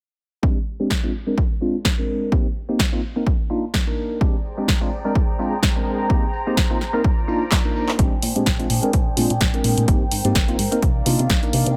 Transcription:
0.42 G#3 C4 D4 G4, kick
0.66 tambourine
0.80 G#3 C4 D4 G4, tambourine
0.90 kick, snare
1.03 G#3 C4 D4 F4
1.27 G#3 C4 D4 A#4
1.38 kick
1.61 G#3 C4 D4 F4, tambourine
1.75 tambourine
1.85 kick, snare
1.98 G#3 C4 D4 A#4
2.32 A#3 C4 D#4 G4, kick
2.56 tambourine
2.68 A#3 C4 D#4 G4, tambourine
2.79 kick, snare
2.92 A#3 C4 D#4 F4
3.03 tambourine
3.16 A#3 C4 D#4 A#4
3.27 kick
3.50 A#3 D4 D#4 F4, tambourine
3.64 tambourine
3.74 kick, snare
3.87 A#3 D4 D#4 A#4
4.11 tambourine
4.21 G#3 C4 D4 G4 G#4 C5 D5 G5 A#5, kick
4.34 tambourine
4.45 tambourine
4.58 G#3 C4 D4 G4, tambourine
4.68 kick, snare
4.81 G#3 C4 D4 F4
4.92 tambourine
5.05 G#3 C4 D4 A#4, tambourine
5.15 kick
5.29 tambourine
5.39 G#3 C4 D4 F4, tambourine
5.52 tambourine
5.63 kick, snare
5.76 G#3 C4 D4 A#4
5.86 tambourine
6.00 tambourine
6.09 A#3 C4 D#4 G4, kick
6.23 tambourine
6.33 tambourine
6.47 A#3 C4 D#4 G4, tambourine
6.57 kick, snare
6.70 A#3 C4 D#4 F4, tambourine
6.81 snare, tambourine
6.93 A#3 C4 D#4 A#4, tambourine
7.04 F4 D5, kick, tambourine
7.18 tambourine
7.27 A#3 D4 D#4 F4, tambourine
7.42 tambourine
7.52 kick, snare, clap
7.64 A#3 D4 D#4 A#4, tambourine
7.76 tambourine
7.88 clap, tambourine
7.98 A#1 G#3 C4 D4 G4 G#4 C5 G5, kick, closed hi-hat
8.22 A#2, open hi-hat
8.36 A#2 G#3 C4 D4 G4, closed hi-hat
8.46 A#1, kick, snare, closed hi-hat
8.59 G#3 C4 D4 F4, closed hi-hat
8.70 A#2, open hi-hat
8.82 G#3 C4 D4 A#4, closed hi-hat
8.93 A#1, kick, closed hi-hat
9.16 A#2 G#3 C4 D4 F4, open hi-hat
9.30 A#2, closed hi-hat
9.41 A#1, kick, snare, closed hi-hat
9.53 G#3 C4 D4 A#4, closed hi-hat
9.64 A#2, open hi-hat
9.78 A#2, closed hi-hat
9.88 G#1 A#3 C4 D#4 G4 A#4, kick, closed hi-hat
10.01 G#2
10.11 G#2, open hi-hat, tambourine
10.24 G#2 A#3 C4 D#4 G4, closed hi-hat, tambourine
10.35 G#1, kick, snare, closed hi-hat
10.48 A#3 C4 D#4 F4, closed hi-hat
10.59 G#2, open hi-hat, tambourine
10.72 A#3 C4 D#4 A#4, closed hi-hat
10.82 C2 D#3 D5 F5, kick, closed hi-hat
10.96 tambourine
11.06 C3 A#3 D4 D#4 F4, open hi-hat, tambourine
11.19 C3, closed hi-hat
11.30 C2, kick, snare, closed hi-hat
11.43 A#3 D4 D#4 A#4, closed hi-hat
11.53 C3, open hi-hat, tambourine
11.66 C3, closed hi-hat, tambourine

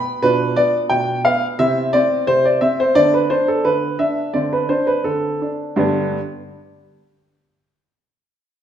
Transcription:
Already playing: B3 D4 B5
0.22 B2 D4 F4 B4
0.56 B3 D5
0.90 B2 G5
1.25 B3 F5
1.59 C3 C4 E4 E5
1.93 C4 D5
2.27 C3 C5
2.45 D5
2.61 C4 E5
2.80 C5
2.95 D3 B3 D4 D5
3.14 B4
3.30 D4 C5
3.48 A4
3.65 D3 B4
3.99 D4 E5
4.33 D3 C4 D4 D5
4.53 B4
4.69 D4 C5
4.87 B4
5.04 D3 A4
5.42 D4
5.76 G2 D3 B3 D4 G4

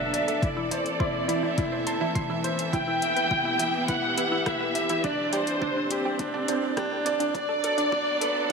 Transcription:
Already playing: B1 F#3 B3 D4 A4 B4 D5 E5
0.13 D5, closed hi-hat
0.28 A4, closed hi-hat
0.42 A1 E3 E4 D5, kick, closed hi-hat
0.57 C4 E4
0.71 E4 C5, closed hi-hat
0.86 closed hi-hat
1.00 E4 C5, kick
1.28 E4 E5, closed hi-hat
1.43 E4 E5
1.58 E4, kick, closed hi-hat
1.72 C5
1.87 A5 C6, closed hi-hat
2.01 E4
2.15 E4 C6, kick, closed hi-hat
2.30 E4
2.44 C5, closed hi-hat
2.59 closed hi-hat
2.73 E1 E4 G5, kick, closed hi-hat
2.85 B3 E4
3.02 E5, closed hi-hat
3.16 G4 B4, closed hi-hat
3.31 E4, kick
3.45 E4
3.59 E4 G5, closed hi-hat
3.88 E4 B4 F#5, kick, closed hi-hat
4.17 E4 B4, closed hi-hat
4.32 E4
4.46 E4 E5, kick, cross-stick, closed hi-hat
4.61 B4
4.75 E5, closed hi-hat
4.89 E4, closed hi-hat
5.04 C2 D4 D5, kick, closed hi-hat
5.33 G4 C5 D5, closed hi-hat
5.44 C4, closed hi-hat
5.62 D4, kick
5.72 D5
5.76 D4
5.91 G4, closed hi-hat
6.05 G4
6.19 D4, kick, closed hi-hat
6.34 D4
6.48 D4 C5, closed hi-hat
6.77 D4 G4, kick, cross-stick, closed hi-hat
7.06 D4 D5, closed hi-hat
7.20 D4, closed hi-hat
7.35 B1 F#3 D4 D5, kick, closed hi-hat
7.49 B3 A4
7.64 A4, closed hi-hat
7.78 D4, closed hi-hat
7.92 D4, kick
8.21 A4 B4, closed hi-hat

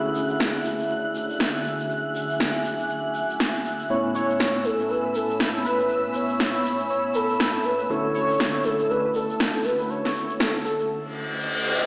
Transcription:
Already playing: D3 A3 C#4 E4 F#4 G#4 C#5 E5 G#5 B5 F#6
0.15 shaker
0.29 shaker
0.39 snare, shaker
0.65 shaker
0.79 shaker
0.90 shaker
1.15 shaker
1.30 shaker
1.39 snare, shaker
1.64 shaker
1.79 shaker
1.90 D6, shaker
2.15 shaker
2.30 shaker
2.40 snare
2.65 shaker
2.79 shaker
2.90 shaker
3.14 shaker
3.30 shaker
3.40 snare, shaker
3.65 shaker
3.79 shaker
3.89 A2 A3 B3 C#4 E4 C#5 E6, shaker
4.15 C#5, shaker
4.30 shaker
4.39 snare, shaker
4.64 A4, shaker
4.70 B5
4.80 shaker
4.90 B4, shaker
5.05 B4
5.15 A4, shaker
5.29 shaker
5.39 snare, shaker
5.65 B4, shaker
5.80 shaker
5.89 shaker
6.14 C#5, shaker
6.29 shaker
6.40 snare, shaker
6.65 shaker
6.80 shaker
6.90 C#5, shaker
7.14 A4, shaker
7.30 shaker
7.40 snare, shaker
7.64 B4, shaker
7.80 shaker
7.89 D3 A3 C#4 E4 F#4 A4 C#5 E5, shaker
8.15 C#5, shaker
8.30 shaker
8.40 A3, snare, shaker
8.65 A4, shaker
8.79 shaker
8.90 B4, shaker
9.05 B4
9.14 A4, shaker
9.30 shaker
9.40 snare, shaker
9.65 B4, shaker
9.80 shaker
9.90 C#5, shaker
10.05 snare
10.15 shaker
10.30 shaker
10.40 A4, snare, shaker
10.65 A4, shaker
10.80 shaker
10.90 reverse cymbal

